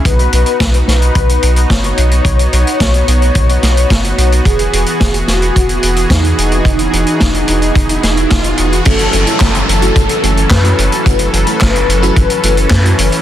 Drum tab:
CC |----------------|----------------|----------------|----------------|
HH |xxxxxxxxxxxxxxxx|xxxxxxxxxxxxxxxx|xxxxxxxxxxxxxxxx|xxxxxxxxxxxxxxxx|
CP |----------------|----------------|----------------|----------------|
SD |----o-o-----o---|----o-----o-o---|----o-o-----o---|----o-----o-o---|
BD |o---o---o---o---|o---o---o---o---|o---o---o---o---|o---o---o---o---|

CC |x---------------|----------------|
HH |xxxxxxxxxxxxxxxx|xxxxxxxxxxxxxxxx|
CP |----x-------x---|----x-------x---|
SD |----o-------o---|----o-------o---|
BD |o---o---o---o---|o---o---o---o---|